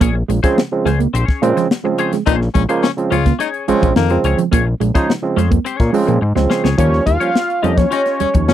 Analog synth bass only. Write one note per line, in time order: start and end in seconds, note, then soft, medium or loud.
0.02 0.23 A#1 loud
0.29 0.40 A#1 medium
0.85 1.08 C#2 medium
1.14 1.25 A#1 medium
1.42 1.53 A#2 medium
2.27 2.49 A#1 loud
2.55 2.66 A#1 loud
3.12 3.34 C#2 medium
3.68 3.74 A#1 soft
3.83 3.94 A#1 medium
3.96 4.18 F2 medium
4.24 4.35 C#2 medium
4.53 4.75 A#1 loud
4.81 4.92 A#1 medium
5.37 5.59 F2 medium
5.80 5.91 A#2 loud
6.08 6.19 A#2 loud
6.22 6.33 G#2 loud
6.36 6.47 C#2 medium
6.65 6.76 C#2 medium
6.79 7.01 D#2 loud
7.07 7.18 D#2 loud
7.64 7.86 F2 loud
8.20 8.26 D#2 soft
8.35 8.50 D#2 medium
8.49 8.54 G2 medium